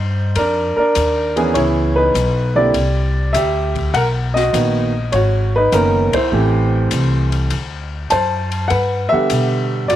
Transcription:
Already playing: upright bass G2, grand piano D#4 C5
0.35 upright bass F2, grand piano D4 A#4, ride
0.77 grand piano D4 A#4, muted upright bass stroke
0.95 upright bass D#2, hi-hat pedal, ride
1.36 grand piano E3 B3 C#4 G#4, ride
1.54 upright bass C#2, grand piano E4 C#5, ride
1.96 grand piano D#4 B4
2.14 upright bass B1, hi-hat pedal, ride
2.55 grand piano D3 A#3 C4 E4 G4 D5
2.74 upright bass C2, ride
3.33 upright bass D2, grand piano G4 E5, hi-hat pedal, ride
3.75 kick, ride
3.93 upright bass B1, grand piano A#4 F#5, ride
4.34 grand piano F#4 D#5, snare
4.53 upright bass A#1, grand piano D#3 A#3 B3 F#4, hi-hat pedal, ride
5.12 upright bass G#1, grand piano F#4 C#5, ride
5.56 grand piano D#4 B4
5.72 upright bass F#1, grand piano D#3 A#3 B3 C#4 D#4 A#4, hi-hat pedal, ride
6.13 grand piano E4 C5, muted upright bass stroke, kick, ride
6.32 upright bass A1, grand piano E3 A3 C4 G4
6.91 upright bass C2, hi-hat pedal, ride
7.32 ride
7.50 upright bass D2, ride
8.10 upright bass F#2, grand piano C5 A5, hi-hat pedal, ride
8.52 ride
8.68 upright bass G2, grand piano B4 F#5, ride
9.09 grand piano D3 G3 B3 G4 E5, muted upright bass stroke
9.13 grand piano F#5
9.30 upright bass B2, hi-hat pedal, ride
9.88 upright bass A2, grand piano F#4 D5, ride

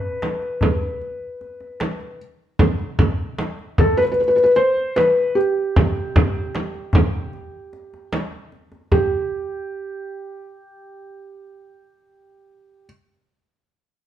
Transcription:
Already playing: felt piano B4
0.22 tombak tek, frame drum
0.42 tombak ka
0.61 tombak dum, frame drum
1.02 tombak ka
1.41 tombak ka
1.60 tombak ka
1.80 tombak tek, frame drum
2.01 tombak ka
2.59 frame drum, tombak dum
2.79 tombak ka
2.99 tombak dum, frame drum
3.38 tombak tek, frame drum
3.59 tombak ka
3.78 felt piano A4, frame drum, tombak dum
3.97 felt piano B4
4.04 felt piano B4
4.12 felt piano B4
4.17 felt piano B4, tombak ka
4.28 felt piano B4
4.36 felt piano B4
4.44 felt piano B4
4.56 felt piano C5, tombak ka
4.77 tombak ka
4.96 felt piano B4, tombak tek, frame drum
5.17 tombak ka
5.35 felt piano G4
5.76 frame drum, tombak dum
5.97 tombak ka
6.16 frame drum, tombak dum
6.55 tombak tek, frame drum
6.74 tombak ka
6.93 tombak dum, frame drum
7.13 tombak ka
7.33 tombak ka
7.73 tombak ka
7.94 tombak ka
8.13 tombak tek, frame drum
8.52 tombak ka
8.72 tombak ka
8.92 felt piano G4, frame drum, tombak dum

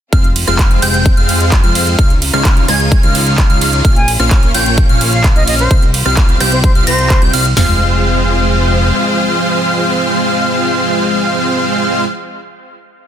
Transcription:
0.13 analog synth bass F1, supersaw synth G#3 C4 F4 C5 F5, string section G#3 C4 F4, digital synth lead F6, kick, closed hi-hat
0.24 closed hi-hat
0.36 open hi-hat, ride
0.47 analog synth bass F1, supersaw synth G#3 C4 F4 C5 F5, digital synth lead F6, cross-stick, closed hi-hat
0.59 kick, clap, closed hi-hat
0.71 closed hi-hat
0.82 analog synth bass F1, supersaw synth G#3 C4 F4 C5 G5, digital synth lead G6, open hi-hat, ride
0.94 closed hi-hat
1.06 kick, closed hi-hat
1.17 analog synth bass F1, supersaw synth G#3 C4 F4 C5 F5, digital synth lead F6, closed hi-hat
1.29 open hi-hat, ride
1.40 closed hi-hat
1.52 kick, clap, closed hi-hat
1.64 analog synth bass F2, supersaw synth G#3 C4 F4 C5 F5, digital synth lead F6, closed hi-hat
1.75 open hi-hat, ride
1.87 closed hi-hat
1.99 analog synth bass C#2, string section C#3 G#3 D#4, supersaw synth C#5, digital synth lead F6, kick, closed hi-hat
2.10 closed hi-hat
2.22 open hi-hat, ride
2.33 analog synth bass C#2, supersaw synth G#3 D#4 F4 C#5 F5, digital synth lead F6, cross-stick, closed hi-hat
2.45 kick, clap, closed hi-hat
2.57 closed hi-hat
2.68 analog synth bass C#2, supersaw synth G#3 D#4 F4 C#5 G#5, digital synth lead G#6, cross-stick, open hi-hat, ride
2.80 closed hi-hat
2.92 kick, closed hi-hat
3.03 analog synth bass C#2, supersaw synth G#3 D#4 F4 C#5 F5, digital synth lead F6, closed hi-hat
3.15 open hi-hat, ride
3.27 closed hi-hat
3.38 kick, clap, closed hi-hat
3.50 analog synth bass C#2, supersaw synth G#3 D#4 F4 C#5 F5, digital synth lead F6, closed hi-hat
3.61 open hi-hat, ride
3.73 closed hi-hat
3.85 analog synth bass A#1, supersaw synth A#3, string section A#3 C#4, digital synth lead F6, kick, closed hi-hat
3.96 flute G#5, closed hi-hat
4.08 open hi-hat, ride
4.20 analog synth bass A#1, supersaw synth A#3 C#4 F4 C#5 F5, digital synth lead F6, cross-stick, closed hi-hat
4.31 kick, clap, closed hi-hat
4.43 closed hi-hat
4.54 analog synth bass A#1, supersaw synth A#3 C#4 F4 C#5 G5, digital synth lead G6, open hi-hat, ride
4.66 closed hi-hat
4.78 kick, closed hi-hat
4.89 analog synth bass A#1, supersaw synth A#3 C#4 F4 C#5 F5, digital synth lead F6, closed hi-hat
5.01 open hi-hat, ride
5.13 flute F5, closed hi-hat
5.24 kick, clap, closed hi-hat
5.36 analog synth bass A#1, supersaw synth A#3 C#4 F4 C#5 F5, flute D#5, digital synth lead F6, closed hi-hat
5.47 flute D#5, open hi-hat, ride
5.59 flute C5, closed hi-hat
5.71 analog synth bass C2, string section C3 C4 G4, supersaw synth G3, digital synth lead F6, kick, closed hi-hat
5.82 closed hi-hat
5.94 open hi-hat, ride
6.06 analog synth bass C2, supersaw synth G3 C4 F4 C5 F5, digital synth lead F6, cross-stick, closed hi-hat
6.17 kick, clap, closed hi-hat
6.29 closed hi-hat
6.40 analog synth bass C2, supersaw synth G3 C4 F4 C5 G5, digital synth lead G6, cross-stick, open hi-hat, ride
6.52 flute C5, closed hi-hat
6.64 flute C5, kick, closed hi-hat
6.75 analog synth bass C2, supersaw synth G3 C4 F4 C5 F5, digital synth lead F6, closed hi-hat
6.87 analog synth bass C2, supersaw synth G3 C4 F4 C5 A#5, flute C5, digital synth lead A#6, open hi-hat, ride
6.99 closed hi-hat
7.10 kick, clap, closed hi-hat
7.22 analog synth bass C2, supersaw synth G3 C4 F4 C5 G5, digital synth lead G6, closed hi-hat
7.33 analog synth bass C2, supersaw synth G3 C4 F4 C5 F5, digital synth lead F6, open hi-hat, ride
7.45 closed hi-hat
7.57 analog synth bass F1, string section F3 F4 G#4 C5, supersaw synth G#3 C4 F4 C5 F5, digital synth lead F6, snare, floor tom, open hi-hat

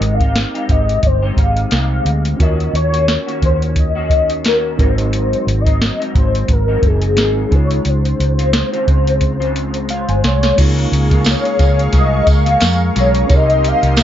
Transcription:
Already playing: clean electric guitar G#3 C4 D#4 G4, reed electric piano C4 D#4 G4 A#4, soft synth lead D#5
0.01 fingered electric bass G#1, closed hi-hat
0.14 soft synth lead F5
0.20 clean electric guitar C4 D#4 G4, kick, closed hi-hat
0.36 snare, closed hi-hat
0.54 clean electric guitar G#3 C4 D#4 G4, closed hi-hat
0.69 fingered electric bass G#1, soft synth lead D#5, kick, closed hi-hat
0.89 closed hi-hat
1.03 fingered electric bass G1, soft synth lead C5, kick, closed hi-hat
1.22 clean electric guitar G#3 C4 D#4 G4
1.37 fingered electric bass G#1, soft synth lead F5, kick, closed hi-hat
1.57 closed hi-hat
1.71 fingered electric bass C2, clean electric guitar G#3 C4 D#4 G4, snare, closed hi-hat
2.05 fingered electric bass D2, closed hi-hat
2.25 closed hi-hat
2.37 fingered electric bass D#2, clean electric guitar D#3 A#3 C#4 F#4, reed electric piano C#4 F4 F#4, kick, closed hi-hat
2.42 reed electric piano A#4, soft synth lead D#5
2.60 closed hi-hat
2.73 fingered electric bass D#2, soft synth lead C#5, closed hi-hat
2.92 clean electric guitar A#3 C#4 F#4, closed hi-hat
3.08 snare, closed hi-hat
3.27 clean electric guitar D#3 A#3 C#4 F#4, closed hi-hat
3.42 fingered electric bass D#2, soft synth lead C5, kick, closed hi-hat
3.62 closed hi-hat
3.76 soft synth lead D#5, kick, closed hi-hat
3.95 clean electric guitar D#3 A#3 C#4 F#4
4.10 kick, closed hi-hat
4.30 closed hi-hat
4.45 clean electric guitar D#3 A#3 C#4 F#4, soft synth lead A#4, snare, closed hi-hat
4.76 fingered electric bass G#1, clean electric guitar G#2 F#3 C4 D#4, reed electric piano C4 D#4 F#4, kick, closed hi-hat
4.81 reed electric piano A#4, soft synth lead C5
4.98 closed hi-hat
5.13 closed hi-hat
5.33 closed hi-hat
5.47 fingered electric bass G#1, closed hi-hat
5.60 soft synth lead D#5
5.65 clean electric guitar F#3 C4 D#4, kick, closed hi-hat
5.82 snare, closed hi-hat
6.00 clean electric guitar G#2 F#3 C4 D#4, closed hi-hat
6.15 fingered electric bass G#1, soft synth lead C5, kick, closed hi-hat
6.35 closed hi-hat
6.48 fingered electric bass G#1, soft synth lead A#4, kick, closed hi-hat
6.68 clean electric guitar G#2 F#3 C4 D#4
6.82 fingered electric bass F#1, kick, closed hi-hat
6.87 soft synth lead G#4
7.02 closed hi-hat
7.16 fingered electric bass G#1, clean electric guitar G#2 F#3 C4 D#4, reed electric piano C4 D#4 F#4 A#4, snare, closed hi-hat
7.49 fingered electric bass C#2, clean electric guitar C#3 G#3 F4, reed electric piano C#4 D#4 F4, kick, closed hi-hat
7.54 reed electric piano G#4, soft synth lead C#5
7.71 closed hi-hat
7.85 fingered electric bass C#2, soft synth lead C5, closed hi-hat
8.05 closed hi-hat
8.20 fingered electric bass C#2, closed hi-hat
8.38 clean electric guitar G#3 C4 F4, closed hi-hat
8.53 snare, closed hi-hat
8.72 clean electric guitar C#3 G#3 C4 F4, closed hi-hat
8.88 fingered electric bass C#2, kick, closed hi-hat
9.07 closed hi-hat
9.21 kick, closed hi-hat
9.40 clean electric guitar C#3 G#3 C4 F4, closed hi-hat
9.56 closed hi-hat
9.74 closed hi-hat
9.89 clean electric guitar G#3 F4, soft synth lead C5, reed electric piano F5, closed hi-hat
10.09 fingered electric bass G1, reed electric piano G#5, closed hi-hat
10.24 fingered electric bass C2, soft synth lead C#5, reed electric piano C6, snare, closed hi-hat
10.43 snare, closed hi-hat
10.56 fingered electric bass C#2, clean electric guitar C#3 G#3 A#3 F4, reed electric piano A#3 D#4 F4, analog synth pad G#4 F5 A#5 C#6, kick, closed hi-hat, crash, tambourine
10.61 reed electric piano G#4
10.79 closed hi-hat
10.92 fingered electric bass C#2, closed hi-hat
11.10 clean electric guitar C#3 G#3 A#3 F4, kick, closed hi-hat
11.24 snare, closed hi-hat, tambourine
11.30 soft synth lead C#5
11.45 closed hi-hat
11.59 fingered electric bass C#2, clean electric guitar C#3 G#3 A#3 F4, kick, closed hi-hat, tambourine
11.79 closed hi-hat
11.93 fingered electric bass C2, clean electric guitar G#3 A#3 F4, kick, closed hi-hat, tambourine
11.98 soft synth lead D#5
12.27 fingered electric bass C#2, kick, closed hi-hat, tambourine
12.31 soft synth lead F5
12.46 clean electric guitar G#3 A#3 F4, closed hi-hat
12.61 fingered electric bass F2, snare, closed hi-hat, tambourine
12.95 fingered electric bass B1, clean electric guitar C#3 G#3 A#3 F4, closed hi-hat, tambourine
13.00 soft synth lead C#5
13.15 closed hi-hat
13.27 fingered electric bass C2, clean electric guitar C3 G3 A#3, reed electric piano C4 D#4 G4, analog synth pad G4 D#5 C6, kick, closed hi-hat, tambourine
13.31 clean electric guitar D#4, reed electric piano A#4, soft synth lead D#5
13.50 closed hi-hat
13.64 soft synth lead F5, closed hi-hat
13.83 fingered electric bass C2, clean electric guitar C3 G3 A#3 D#4, closed hi-hat
13.97 snare, closed hi-hat, tambourine

